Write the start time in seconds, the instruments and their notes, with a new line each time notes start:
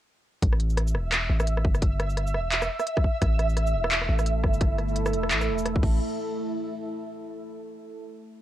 0.42 808-style bass A1, synth texture E5, kick, closed hi-hat
0.53 cross-stick
0.60 closed hi-hat
0.70 shaker
0.77 cross-stick, closed hi-hat
0.88 shaker
0.95 808-style bass E1, cross-stick
1.12 cross-stick, clap, closed hi-hat
1.30 808-style bass A1
1.40 cross-stick, shaker
1.47 closed hi-hat
1.57 cross-stick
1.65 808-style bass G1, kick
1.75 cross-stick, shaker
1.82 kick, closed hi-hat
2.00 cross-stick, closed hi-hat
2.10 shaker
2.17 cross-stick, closed hi-hat
2.27 shaker
2.34 808-style bass E1, cross-stick
2.52 clap, closed hi-hat
2.62 cross-stick, shaker
2.80 cross-stick, shaker
2.87 closed hi-hat
2.97 kick, cross-stick
3.04 kick
3.22 808-style bass A1, ambient pad A3 E4 A4, kick, cross-stick, closed hi-hat
3.39 cross-stick, closed hi-hat
3.49 shaker
3.57 cross-stick, closed hi-hat
3.67 shaker
3.74 808-style bass E1
3.84 cross-stick
3.91 clap, closed hi-hat
4.01 cross-stick
4.09 808-style bass A1
4.19 cross-stick, shaker
4.26 closed hi-hat
4.44 808-style bass G1, kick, cross-stick
4.54 shaker
4.61 kick, cross-stick, closed hi-hat
4.78 cross-stick, closed hi-hat
4.89 shaker
4.96 closed hi-hat
5.06 cross-stick, shaker
5.13 808-style bass E1, closed hi-hat
5.23 cross-stick
5.31 808-style bass A1, clap, closed hi-hat
5.41 cross-stick, shaker
5.48 808-style bass E1
5.58 shaker
5.66 cross-stick, closed hi-hat
5.76 kick
5.83 808-style bass A1, kick, crash